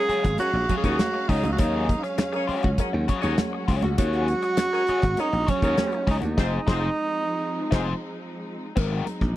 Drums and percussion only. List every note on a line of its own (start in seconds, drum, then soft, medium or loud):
0.09 closed hi-hat medium
0.24 kick loud
0.24 snare soft
0.24 closed hi-hat medium
0.38 closed hi-hat medium
0.38 muted conga medium
0.69 kick medium
0.69 closed hi-hat medium
0.69 muted conga soft
0.69 low conga medium
0.84 kick medium
0.84 closed hi-hat medium
0.99 snare loud
0.99 closed hi-hat medium
0.99 high conga medium
1.29 kick medium
1.29 open hi-hat medium
1.44 closed hi-hat soft
1.44 high conga medium
1.59 kick loud
1.59 closed hi-hat loud
1.59 muted conga medium
1.89 kick loud
1.89 closed hi-hat medium
2.04 snare soft
2.04 closed hi-hat soft
2.18 snare loud
2.18 closed hi-hat loud
2.18 high conga medium
2.33 closed hi-hat soft
2.48 open hi-hat soft
2.63 kick medium
2.63 closed hi-hat medium
2.78 kick medium
2.78 closed hi-hat medium
2.78 muted conga medium
3.08 kick medium
3.08 closed hi-hat medium
3.08 muted conga medium
3.23 closed hi-hat medium
3.38 snare loud
3.38 closed hi-hat medium
3.38 high conga medium
3.68 kick medium
3.68 open hi-hat medium
3.82 closed hi-hat medium
3.82 high conga medium
3.98 kick loud
3.98 closed hi-hat loud
3.98 muted conga medium
4.13 closed hi-hat soft
4.28 closed hi-hat medium
4.42 snare soft
4.42 closed hi-hat soft
4.57 snare loud
4.57 closed hi-hat loud
4.57 high conga medium
4.87 closed hi-hat medium
5.02 kick loud
5.02 snare soft
5.02 closed hi-hat medium
5.17 closed hi-hat medium
5.17 muted conga soft
5.33 closed hi-hat soft
5.48 kick medium
5.48 closed hi-hat medium
5.48 muted conga medium
5.48 low conga medium
5.62 kick medium
5.62 closed hi-hat soft
5.77 snare loud
5.77 closed hi-hat medium
5.77 high conga medium
5.92 closed hi-hat soft
6.07 kick medium
6.07 open hi-hat medium
6.22 closed hi-hat soft
6.22 high conga medium
6.38 kick loud
6.38 snare loud
6.38 crash medium
6.68 kick loud
6.68 snare loud
7.72 kick loud
7.72 snare loud
7.72 crash medium
8.77 kick loud
8.77 crash loud
8.77 cowbell medium
8.77 muted conga medium
9.07 closed hi-hat medium
9.07 muted conga soft
9.21 kick medium
9.21 snare soft